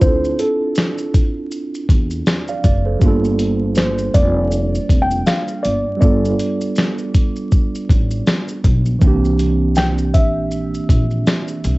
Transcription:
0.00 upright bass D2, tine electric piano C4 D4 F4, felt piano C5, kick, shaker
0.05 tine electric piano E4 A4
0.25 shaker
0.39 felt piano A4, closed hi-hat, shaker
0.75 finger snap, snare, shaker
0.98 shaker
1.14 kick, closed hi-hat, shaker
1.51 shaker
1.75 shaker
1.89 upright bass E2, kick, closed hi-hat, shaker
2.11 shaker
2.26 finger snap, snare, shaker
2.48 tine electric piano D5 F5, shaker
2.64 upright bass F#1, tine electric piano D5, kick, closed hi-hat, shaker
2.86 tine electric piano A4 C5
2.99 upright bass G1, tine electric piano G3 A#3, kick, shaker
3.03 tine electric piano D4 F4
3.07 tine electric piano A4
3.24 shaker
3.39 closed hi-hat, shaker
3.75 felt piano C5, finger snap, snare, shaker
3.98 shaker
4.14 upright bass F1, felt piano D5, kick, closed hi-hat, shaker
4.51 shaker
4.75 shaker
4.89 upright bass F1, kick, closed hi-hat, shaker
5.02 felt piano G5
5.11 shaker
5.27 felt piano F5, finger snap, snare, shaker
5.48 shaker
5.63 upright bass G1, felt piano D5, closed hi-hat, shaker
5.97 tine electric piano G3 B3, felt piano D5
6.01 upright bass G1, tine electric piano D4 F4 A4, kick, shaker
6.25 shaker
6.39 closed hi-hat, shaker
6.61 shaker
6.76 finger snap, snare, shaker
6.98 shaker
7.15 kick, closed hi-hat, shaker
7.36 shaker
7.52 kick, shaker
7.75 shaker
7.89 upright bass A1, kick, closed hi-hat, shaker
8.11 shaker
8.27 finger snap, snare, shaker
8.48 shaker
8.64 upright bass B1, kick, closed hi-hat, shaker
8.86 shaker
8.99 upright bass C2, tine electric piano E3 A#3, kick, shaker
9.03 tine electric piano C4 D4
9.07 tine electric piano G4
9.25 shaker
9.39 closed hi-hat, shaker
9.75 felt piano G5, finger snap, snare, shaker
9.98 shaker
10.14 upright bass A#1, felt piano E5, kick, closed hi-hat, shaker
10.51 shaker
10.75 shaker
10.89 upright bass A#1, kick, closed hi-hat, shaker
11.11 shaker
11.27 finger snap, snare, shaker
11.48 shaker
11.64 upright bass C2, closed hi-hat, shaker

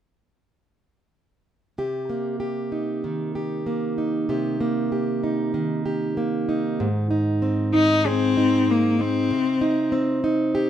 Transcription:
1.78 steel-string acoustic guitar C3 G4
2.10 steel-string acoustic guitar A#3
2.40 steel-string acoustic guitar G4
2.72 steel-string acoustic guitar D#4
3.04 steel-string acoustic guitar D#3
3.35 steel-string acoustic guitar G4
3.66 steel-string acoustic guitar A#3
3.98 steel-string acoustic guitar D#4
4.29 steel-string acoustic guitar C3 G4
4.61 steel-string acoustic guitar A#3
4.92 steel-string acoustic guitar G4
5.24 steel-string acoustic guitar D#4
5.54 steel-string acoustic guitar D#3
5.86 steel-string acoustic guitar G4
6.17 steel-string acoustic guitar A#3
6.49 steel-string acoustic guitar D#4
6.80 steel-string acoustic guitar G#2
7.11 steel-string acoustic guitar D#4
7.42 steel-string acoustic guitar C4
7.74 steel-string acoustic guitar D#4, cello D#4
8.05 cello C4, steel-string acoustic guitar G#4
8.37 steel-string acoustic guitar D#4
8.68 cello A#3, steel-string acoustic guitar C4
8.99 cello C4, steel-string acoustic guitar D#4
9.31 steel-string acoustic guitar C3
9.61 steel-string acoustic guitar D#4
9.92 steel-string acoustic guitar C4
10.24 steel-string acoustic guitar D#4
10.55 steel-string acoustic guitar G4

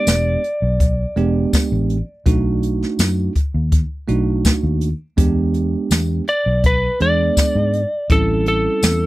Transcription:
Already playing: tine electric piano G#3 B3 D4 G4, lead electric guitar D5
0.07 fingered electric bass E1, snare, closed hi-hat, tambourine
0.44 closed hi-hat
0.62 fingered electric bass B1
0.80 kick, closed hi-hat
1.16 fingered electric bass E1, tine electric piano G#3 B3 D4 G4, closed hi-hat
1.53 kick, snare, closed hi-hat, tambourine
1.72 fingered electric bass A1
1.90 closed hi-hat
2.26 fingered electric bass B1, tine electric piano A3 D4 D#4 F#4, kick, closed hi-hat
2.63 closed hi-hat
2.83 snare
2.99 fingered electric bass F#2, snare, closed hi-hat, tambourine
3.35 kick, closed hi-hat
3.54 fingered electric bass D#2
3.72 kick, closed hi-hat
4.08 fingered electric bass B1, tine electric piano A3 D4 D#4 F#4, closed hi-hat
4.45 kick, snare, closed hi-hat, tambourine
4.63 fingered electric bass D#2
4.81 closed hi-hat
5.17 fingered electric bass E2, tine electric piano G#3 B3 D4 G4, kick, closed hi-hat
5.54 closed hi-hat
5.91 fingered electric bass E2, snare, closed hi-hat, tambourine
6.27 lead electric guitar D5, closed hi-hat
6.46 fingered electric bass B1
6.64 lead electric guitar B4, kick, closed hi-hat
7.00 fingered electric bass E2, tine electric piano G#3 B3 D4 G#4, lead electric guitar D5, closed hi-hat
7.37 kick, snare, closed hi-hat, tambourine
7.55 fingered electric bass G#2
7.73 closed hi-hat
8.10 fingered electric bass A1, tine electric piano G3 C4 C#4 E4, lead electric guitar A4, kick, closed hi-hat
8.46 lead electric guitar A4, closed hi-hat
8.83 fingered electric bass E2, snare, closed hi-hat, tambourine

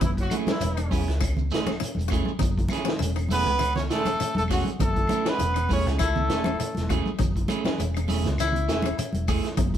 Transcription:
0.01 fingered electric bass F#1, guzheng D#4, trumpet E4, kick, closed hi-hat, low conga, shekere
0.06 tenor saxophone E3
0.17 tenor saxophone F#3, trumpet F#4, kick, closed hi-hat, shekere
0.30 clean electric guitar A3 C#4 E4 G#4, closed hi-hat, high conga, claves, shekere
0.47 tenor saxophone E3, guzheng C#4, trumpet E4, snare, high conga, shekere
0.60 fingered electric bass E1, guzheng E4, closed hi-hat, high conga, shekere
0.77 guzheng D#4, closed hi-hat, claves, shekere
0.91 clean electric guitar C#4 E4 G#4, kick, open hi-hat, high conga, shekere
1.08 fingered electric bass C#2, snare, closed hi-hat, shekere
1.20 guzheng E4, kick, closed hi-hat, claves, shekere
1.37 low conga, shekere
1.51 fingered electric bass E1, clean electric guitar A3 C#4 E4 G#4, snare, closed hi-hat, shekere
1.67 guzheng C#4, snare, high conga, claves, shekere
1.80 guzheng E4, muted fingered electric bass stroke, closed hi-hat, shekere
1.95 fingered electric bass E1, high conga, shekere
2.01 closed hi-hat
2.08 clean electric guitar A3 C#4 E4 G#4, guzheng F#4, kick, claves, shekere
2.14 closed hi-hat
2.25 high conga, shekere
2.39 fingered electric bass F#1, guzheng D#4, kick, closed hi-hat, low conga, shekere
2.58 kick, closed hi-hat, shekere
2.68 clean electric guitar C#4 E4 G#4, muted clean electric guitar stroke, high conga, claves, shekere
2.73 snare, closed hi-hat
2.85 guzheng C#4, snare, shekere
2.99 fingered electric bass E1, guzheng E4, closed hi-hat, high conga, shekere
3.16 guzheng D#4, closed hi-hat, claves, shekere
3.29 clean electric guitar A3 C#4 E4 G#4, tenor saxophone B3, open hi-hat, high conga, shekere
3.33 trumpet B4
3.46 fingered electric bass C#2, closed hi-hat, low conga, shekere
3.59 guzheng E4, closed hi-hat, claves, shekere
3.76 tenor saxophone C#4, trumpet C#5, snare, closed hi-hat, low conga, shekere
3.90 fingered electric bass E1, clean electric guitar A3 C#4 E4 G#4, tenor saxophone A3, trumpet A4, snare, closed hi-hat, shekere
4.05 guzheng C#4, closed hi-hat, high conga, claves, shekere
4.20 guzheng E4, muted fingered electric bass stroke, closed hi-hat, shekere
4.35 fingered electric bass E1, tenor saxophone A3, trumpet A4, closed hi-hat, high conga, shekere
4.48 tenor saxophone F#3, clean electric guitar A3 C#4 G#4, guzheng F#4, trumpet F#4, muted clean electric guitar stroke, kick, open hi-hat, claves
4.52 shekere
4.65 closed hi-hat, high conga
4.69 shekere
4.79 fingered electric bass F#1, tenor saxophone A3, guzheng D#4, trumpet A4, kick, closed hi-hat, low conga, shekere
4.96 kick, closed hi-hat, shekere
5.08 clean electric guitar A3 C#4 E4, closed hi-hat, high conga, claves
5.12 shekere
5.25 tenor saxophone B3, guzheng C#4, clean electric guitar C#4 E4 G#4, snare, shekere
5.29 trumpet B4
5.39 fingered electric bass E1, guzheng E4, closed hi-hat, high conga, shekere
5.54 guzheng D#4, closed hi-hat, claves, shekere
5.69 clean electric guitar A3 C#4 E4 G#4, tenor saxophone C#4, kick, open hi-hat, high conga, shekere
5.73 trumpet C#5
5.86 fingered electric bass C#2, clean electric guitar C#4 E4 G#4, snare, closed hi-hat, shekere
5.99 guzheng E4, kick, closed hi-hat, claves, shekere
6.04 tenor saxophone A3, trumpet A4
6.16 low conga, shekere
6.30 fingered electric bass E1, clean electric guitar A3 C#4 E4 G#4, snare, closed hi-hat, shekere
6.44 guzheng C#4, high conga, claves, shekere
6.60 guzheng E4, muted fingered electric bass stroke, closed hi-hat, shekere
6.75 fingered electric bass E1, snare, closed hi-hat, high conga, shekere
6.89 clean electric guitar A3 C#4 E4 G#4, guzheng F#4, kick, closed hi-hat, claves, shekere
7.06 muted fingered electric bass stroke, high conga, shekere
7.19 fingered electric bass F#1, guzheng D#4, kick, closed hi-hat, low conga, shekere
7.36 kick, closed hi-hat, shekere
7.48 clean electric guitar A3 C#4 E4 G#4, closed hi-hat, high conga, claves, shekere
7.65 guzheng C#4, clean electric guitar C#4 E4 G#4, snare, high conga, shekere
7.78 fingered electric bass E1, guzheng E4, closed hi-hat, high conga, shekere
7.94 guzheng D#4, closed hi-hat, claves, shekere
8.08 clean electric guitar A3 C#4 E4 G#4, open hi-hat, high conga, shekere
8.24 fingered electric bass C#2, snare, closed hi-hat, low conga, shekere
8.38 guzheng E4, snare, closed hi-hat, claves, shekere
8.53 closed hi-hat, low conga, shekere
8.68 fingered electric bass E1, clean electric guitar A3 C#4 E4 G#4, snare, closed hi-hat, shekere
8.82 guzheng C#4, closed hi-hat, high conga, claves, shekere
8.98 guzheng E4, muted fingered electric bass stroke, closed hi-hat, shekere
9.13 fingered electric bass E1, closed hi-hat, high conga, shekere
9.28 clean electric guitar A3 E4 G#4, guzheng G#4, muted clean electric guitar stroke, kick, open hi-hat, claves, shekere
9.44 muted fingered electric bass stroke, snare, closed hi-hat, shekere
9.57 fingered electric bass F#1, guzheng D#4, kick, closed hi-hat, low conga, shekere
9.74 kick, closed hi-hat

